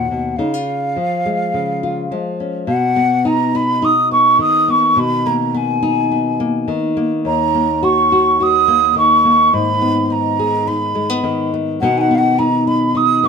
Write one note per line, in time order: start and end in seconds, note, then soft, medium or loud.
0.00 0.40 D#2 medium
0.00 0.11 A#2 medium
0.00 0.40 D#3 soft
0.00 0.37 A#3 medium
0.00 0.37 F#4 medium
0.00 0.38 F#5 medium
0.11 0.38 B2 soft
0.36 0.96 C#3 medium
0.36 0.54 D#4 medium
0.36 2.37 F5 medium
0.54 1.82 F4 soft
0.96 2.10 F3 soft
1.26 2.10 G#3 soft
1.54 2.11 C#3 soft
1.83 2.65 F4 soft
2.11 2.65 F3 soft
2.11 2.68 G#3 medium
2.40 2.65 C#4 soft
2.67 4.38 B2 medium
2.67 3.28 F#5 medium
2.96 4.10 B3 medium
3.25 3.54 D#4 medium
3.25 3.57 A#5 medium
3.55 3.82 D#4 medium
3.55 3.86 B5 loud
3.82 5.82 D#4 medium
3.82 4.11 D#6 loud
4.11 4.67 B3 soft
4.11 4.37 C#6 medium
4.39 6.66 D#3 medium
4.39 4.71 D#6 loud
4.68 4.93 B3 medium
4.68 5.00 C#6 medium
4.96 6.67 B2 medium
4.96 5.28 B5 loud
5.26 6.40 A#3 medium
5.26 5.58 A#5 medium
5.54 6.10 B3 medium
5.54 6.69 G#5 medium
5.83 7.82 D#4 medium
6.12 7.21 B3 medium
6.40 6.96 A#3 medium
6.68 8.94 D#3 medium
6.97 7.54 A#3 medium
7.25 9.53 D#2 medium
7.25 7.85 A#5 loud
7.55 8.67 A#3 medium
7.83 8.10 F#4 medium
7.83 8.44 C#6 medium
8.12 8.39 F#4 medium
8.40 9.50 F#4 medium
8.40 8.97 D#6 loud
8.68 9.24 A#3 medium
8.96 11.22 D#3 medium
8.96 9.55 C#6 medium
9.25 9.49 A#3 soft
9.53 11.78 G#2 medium
9.53 10.13 B5 loud
9.82 10.95 B3 medium
10.10 10.67 D#4 medium
10.10 10.69 A#5 medium
10.39 11.78 G#4 medium
10.67 11.84 D#4 medium
10.67 11.53 B5 medium
10.95 11.10 G#3 medium
11.10 11.52 B3 medium
11.23 11.81 D#3 medium
11.54 11.83 B3 soft
11.80 13.28 B2 medium
11.80 13.28 D#3 medium
11.80 12.10 B3 medium
11.80 12.39 D#4 medium
11.80 11.98 F#5 loud
11.97 12.15 F#5 loud
11.97 12.02 G#5 medium
12.11 13.22 B3 medium
12.11 12.19 F5 medium
12.18 12.40 F#5 loud
12.38 12.67 D#4 medium
12.38 12.69 A#5 loud
12.67 12.94 D#4 medium
12.67 12.98 B5 medium
12.95 13.28 D#4 medium
12.95 13.27 D#6 medium
13.24 13.28 B3 medium
13.24 13.28 C#6 medium